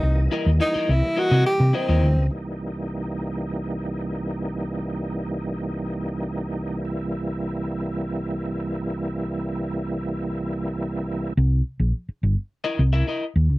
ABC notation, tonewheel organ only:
X:1
M:4/4
L:1/8
Q:1/4=106
K:Cmix
V:1 name="Tonewheel organ"
^d8 | ^D8- | ^D8 | E8- |
E8 | z8 |]
V:2 name="Tonewheel organ" clef=bass
[E,G,B,]8 | [C,,E,G,B,]8- | [C,,E,G,B,]8- | [C,,E,G,B,]8- |
[C,,E,G,B,]8 | z8 |]